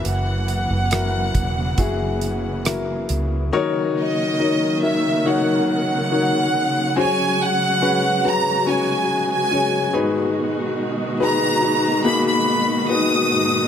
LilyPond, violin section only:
\new Staff \with { instrumentName = "Violin section" } { \time 4/4 \key dis \phrygian \tempo 4 = 70 fis''2. r4 | r8 dis''4 e''8 fis''8 fis''4. | gis''8 fis''4 ais''8 gis''8. gis''8. r8 | r4 ais''4 b''16 b''8. dis'''4 | }